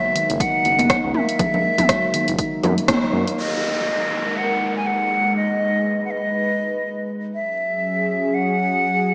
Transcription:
0.00 0.42 E5 loud
0.15 0.23 D#3 medium
0.15 closed hi-hat soft
0.30 0.38 F#1 loud
0.30 closed hi-hat soft
0.40 0.53 D#4 medium
0.40 1.14 F#5 loud
0.40 kick loud
0.40 closed hi-hat medium
0.65 0.76 F#1 medium
0.65 0.78 A#3 medium
0.65 closed hi-hat soft
0.79 0.87 F#1 medium
0.79 closed hi-hat soft
0.79 high conga loud
0.90 kick loud
0.90 cross-stick loud
0.90 closed hi-hat soft
1.04 1.12 C#2 loud
1.14 1.27 A#3 loud
1.14 2.84 E5 loud
1.14 mid tom medium
1.29 closed hi-hat soft
1.39 1.53 G#3 medium
1.39 kick loud
1.39 closed hi-hat medium
1.39 high conga medium
1.39 low conga medium
1.54 low conga loud
1.64 1.77 A#3 medium
1.78 kick medium
1.78 closed hi-hat soft
1.78 mid tom medium
1.78 high conga medium
1.78 low conga loud
1.89 2.02 F#3 medium
1.89 kick loud
1.89 cross-stick loud
1.89 closed hi-hat medium
2.14 2.22 D#3 medium
2.14 closed hi-hat medium
2.14 high conga soft
2.28 2.36 F#1 medium
2.28 closed hi-hat soft
2.38 2.51 D#4 medium
2.38 kick loud
2.38 closed hi-hat medium
2.63 2.74 F#2 medium
2.63 2.76 A#3 medium
2.63 closed hi-hat soft
2.63 mid tom medium
2.63 low conga loud
2.78 closed hi-hat soft
2.88 3.01 D#4 medium
2.88 kick loud
2.88 cross-stick loud
2.88 closed hi-hat medium
2.88 mid tom medium
2.88 high conga loud
3.13 3.24 F#2 medium
3.13 3.26 A#3 loud
3.27 closed hi-hat soft
3.38 7.31 G#3 medium
3.38 7.31 D#4 medium
3.38 5.34 A#4 medium
3.38 4.39 D#5 medium
3.38 downlifter medium
4.37 4.76 F#5 medium
4.76 4.88 G#5 medium
4.87 5.36 F#5 medium
5.37 7.33 B4 medium
5.37 6.01 D#5 medium
6.05 6.12 F#5 medium
6.11 7.10 D#5 medium
7.35 9.14 F#3 medium
7.35 9.14 C#4 medium
7.35 9.14 G#4 medium
7.35 8.36 E5 medium
8.34 9.14 F#5 loud

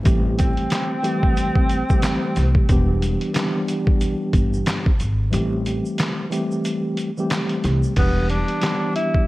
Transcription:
0.03 0.50 A1 loud
0.03 0.96 E3 loud
0.03 0.97 G3 medium
0.03 0.97 A3 medium
0.03 0.97 C4 medium
0.03 0.98 G4 loud
0.03 kick loud
0.03 closed hi-hat loud
0.03 shaker medium
0.38 2.65 C4 medium
0.38 kick medium
0.38 closed hi-hat medium
0.38 shaker medium
0.57 closed hi-hat medium
0.70 snare loud
0.70 clap loud
0.70 closed hi-hat loud
0.70 shaker medium
1.02 1.81 E3 loud
1.02 1.81 G3 medium
1.02 1.81 A3 medium
1.02 1.82 C4 medium
1.02 1.82 G4 loud
1.02 closed hi-hat medium
1.02 shaker medium
1.23 kick medium
1.37 closed hi-hat medium
1.37 shaker medium
1.55 kick medium
1.69 closed hi-hat medium
1.69 shaker soft
1.90 2.64 E3 medium
1.90 2.64 G3 medium
1.90 2.65 A3 medium
1.90 2.65 C4 medium
1.90 2.65 G4 loud
1.90 kick loud
1.90 shaker medium
2.02 snare loud
2.02 clap loud
2.02 closed hi-hat loud
2.02 shaker medium
2.36 2.53 C2 loud
2.36 snare soft
2.36 closed hi-hat medium
2.36 shaker medium
2.55 kick loud
2.69 3.14 E1 loud
2.69 3.31 E3 medium
2.69 3.31 G3 medium
2.69 3.31 B3 medium
2.69 3.32 D4 medium
2.69 3.32 G4 loud
2.69 kick loud
2.69 closed hi-hat medium
2.69 shaker medium
3.02 closed hi-hat medium
3.02 shaker medium
3.21 closed hi-hat soft
3.33 4.88 E3 medium
3.33 4.88 G3 medium
3.33 4.88 B3 medium
3.33 4.89 D4 medium
3.33 4.89 G4 loud
3.33 snare loud
3.33 clap loud
3.33 closed hi-hat loud
3.33 shaker medium
3.68 closed hi-hat medium
3.68 shaker medium
3.87 kick medium
4.01 closed hi-hat medium
4.01 shaker medium
4.33 4.62 G1 medium
4.33 kick medium
4.33 closed hi-hat medium
4.33 shaker soft
4.54 shaker medium
4.66 snare loud
4.66 clap loud
4.66 closed hi-hat loud
4.66 shaker medium
4.86 kick loud
5.00 5.29 G#1 medium
5.00 closed hi-hat medium
5.00 shaker medium
5.30 5.78 A1 loud
5.30 6.24 E3 medium
5.30 6.24 G3 medium
5.30 6.25 A3 medium
5.30 6.25 C4 medium
5.30 6.25 G4 loud
5.30 closed hi-hat loud
5.30 shaker medium
5.66 closed hi-hat medium
5.66 shaker medium
5.85 shaker medium
5.98 snare loud
5.98 clap loud
5.98 closed hi-hat loud
5.98 shaker medium
6.30 7.08 E3 loud
6.30 7.09 G3 medium
6.30 7.09 A3 medium
6.30 7.09 C4 medium
6.30 7.10 G4 loud
6.30 closed hi-hat medium
6.30 shaker medium
6.51 shaker soft
6.65 closed hi-hat medium
6.65 shaker medium
6.97 closed hi-hat medium
6.97 shaker soft
7.17 7.91 E3 loud
7.17 7.92 G3 medium
7.17 7.92 A3 medium
7.17 7.92 C4 medium
7.17 7.93 G4 loud
7.17 shaker medium
7.30 snare loud
7.30 clap loud
7.30 closed hi-hat loud
7.30 shaker medium
7.49 closed hi-hat medium
7.64 7.80 C2 loud
7.64 snare soft
7.64 closed hi-hat medium
7.64 shaker medium
7.83 shaker medium
7.96 8.42 E1 loud
7.96 8.58 E3 medium
7.96 8.59 G3 medium
7.96 8.27 B3 loud
7.96 8.59 B3 medium
7.96 8.59 D4 medium
7.96 8.60 G4 loud
7.96 kick loud
7.96 closed hi-hat medium
7.96 crash medium
8.30 8.92 D4 medium
8.30 closed hi-hat medium
8.48 closed hi-hat soft
8.61 9.27 E3 medium
8.61 9.27 G3 medium
8.61 9.27 B3 medium
8.61 9.27 D4 medium
8.61 9.27 G4 loud
8.61 snare loud
8.61 clap loud
8.61 closed hi-hat loud
8.95 9.25 E4 medium
8.95 closed hi-hat medium
9.14 kick medium

